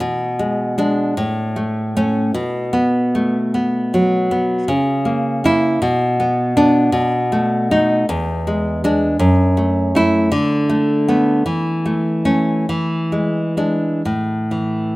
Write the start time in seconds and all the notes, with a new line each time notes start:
0.00 B2
0.39 G#3
0.78 G#3 D4
1.17 A2
1.56 A3
1.97 A3 C#4
2.34 B2
2.73 B3
3.15 A3
3.54 B3
3.94 F#3
4.31 B3
4.68 C#3
5.05 A#3
5.44 A#3 E4
5.82 B2
6.20 B3
6.57 B3 D4
6.92 B2
7.32 A3
7.71 A3 D#4
8.09 E2
8.47 G#3
8.84 G#3 D4
9.19 F#2
9.57 A3
9.95 A3 E4
10.32 D3
10.69 A3
11.08 A3 B3
11.46 E3
11.86 A3
12.25 A3 C#4
12.69 E3
13.12 G#3
13.57 G#3 D4
14.05 A2
14.51 E3